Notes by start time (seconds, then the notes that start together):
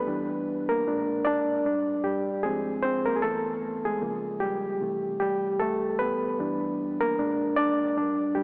Already playing: B3 B4
0.07 E3 G3 D4
0.69 A#3 A#4
0.87 A#2 G#3 D4
1.25 D4 D5
1.65 A2 G3 D4
2.04 G3 G4
2.43 G#2 F3 G#3 C4 G#4
2.82 C4 C5
3.06 A#3 A#4
3.16 G#4
3.22 G2 E3 A3 B3 A4
3.85 G#3 G#4
4.01 C#3 F3 A#3
4.40 G3 G4
4.81 C3 E3 A3
5.20 G3 G4
5.60 A3 A4
5.99 B3 B4
6.39 E3 G3 D4
7.01 A#3 A#4
7.18 A#2 G#3 D4
7.56 D4 D5
7.97 A2 G3 D4
8.35 G3 G4